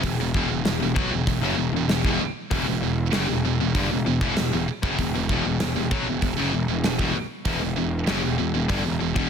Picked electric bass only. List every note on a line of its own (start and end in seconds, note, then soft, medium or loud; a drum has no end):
0.03 0.17 E1 medium
0.18 0.33 E1 medium
0.34 0.48 E1 medium
0.49 0.64 E1 medium
0.64 0.80 E1 medium
0.81 0.95 E1 medium
0.96 1.10 B1 medium
1.11 1.26 E1 medium
1.27 1.40 E1 medium
1.40 1.56 F#1 medium
1.57 1.72 E1 medium
1.72 1.88 E1 medium
1.88 2.03 E1 medium
2.04 2.19 E1 medium
2.21 muted picked electric bass stroke soft
2.51 2.66 E1 medium
2.67 2.82 E1 medium
2.83 3.12 E1 medium
3.14 3.28 F#1 medium
3.29 3.44 E1 medium
3.45 3.59 E1 medium
3.61 3.74 E1 medium
3.75 3.90 G1 medium
3.92 4.06 E1 medium
4.07 4.20 E1 medium
4.21 4.36 E1 medium
4.39 4.52 E1 medium
4.53 4.67 E1 medium
4.69 muted picked electric bass stroke soft
4.83 4.98 F#1 medium
4.99 5.13 E1 medium
5.16 5.29 E1 medium
5.30 5.44 E1 medium
5.46 5.60 E1 medium
5.62 5.76 E1 medium
5.77 5.91 E1 medium
5.91 6.06 B1 medium
6.08 6.22 E1 medium
6.22 6.37 E1 medium
6.38 6.52 F#1 medium
6.54 6.68 E1 medium
6.69 6.83 E1 medium
6.85 6.98 E1 medium
6.99 7.14 E1 medium
7.16 muted picked electric bass stroke soft
7.45 7.60 E1 medium
7.62 7.76 E1 medium
7.78 8.06 E1 medium
8.08 8.23 F#1 medium
8.24 8.38 E1 medium
8.39 8.54 E1 medium
8.55 8.69 E1 medium
8.69 8.84 G1 medium
8.86 9.00 E1 medium
9.00 9.15 E1 medium
9.16 9.30 E1 medium